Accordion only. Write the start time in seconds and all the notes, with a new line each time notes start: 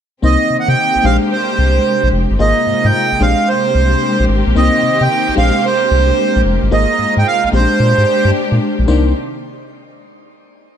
0.24 D#5
0.60 F#5
0.69 G5
1.05 F5
1.32 C5
2.41 D#5
2.85 G5
3.22 F5
3.48 C5
4.57 D#5
5.02 G5
5.38 F5
5.65 C5
6.73 D#5
7.19 G5
7.27 F5
7.45 F5
7.55 C5